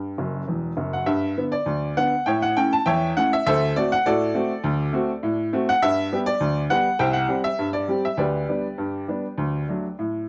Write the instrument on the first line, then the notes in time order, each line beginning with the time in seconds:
upright piano
Already playing: G2 G4 G5
0.18 F#1 F#2
0.48 E1 E2
0.77 F#1 F#2
0.93 F#5
1.06 G2 E5
1.37 D3 B3
1.52 D5
1.66 D2
1.97 D3 B3 F#5
2.26 A2 C#5 E5 G5
2.42 F#5
2.56 A3 C#4 E4 G5
2.73 A5
2.86 E2 C#5 E5 G5
3.16 A3 C#4 E4 F#5
3.33 E5
3.46 D2 A4 C5 E5
3.76 A3 C4 F#4 D5
3.92 F#5
4.06 A2 F#4 A4 D5
4.34 A3 C4 F#4
4.64 D2
4.93 A3 C4 F#4
5.23 A2
5.53 A3 C4 F#4
5.69 F#5
5.82 G2 E5
6.12 G3 B3 G4
6.26 D5
6.40 D2
6.70 G3 B3 G4 F#5
6.99 C2 C5 E5 G5
7.13 F#5
7.28 G3 C4 G4
7.44 E5
7.59 G2
7.73 D5
7.88 G3 C4 G4
8.05 E5
8.17 D2 G4 B4 D5
8.49 G3 B3 D4
8.78 G2
9.08 G3 B3 D4
9.38 D2
9.68 F#3 A3 D4
9.99 A2